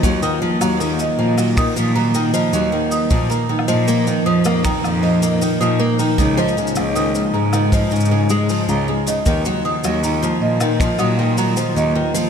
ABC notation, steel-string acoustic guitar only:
X:1
M:4/4
L:1/16
Q:1/4=78
K:Ebm
V:1 name="Steel-string acoustic guitar" clef=bass
G, E, F, G, E,2 F, G, E, F, G, E, F, G, E,2 | F, B, E, F, B, E, F, B, E,2 F, B, E, F, B, E, | E, F, D,2 E, F, D, E, F, D, D, A, F, F D, D, | E, G, F, G, E, F,2 E, F, G, E, G, F, G, E, F, |]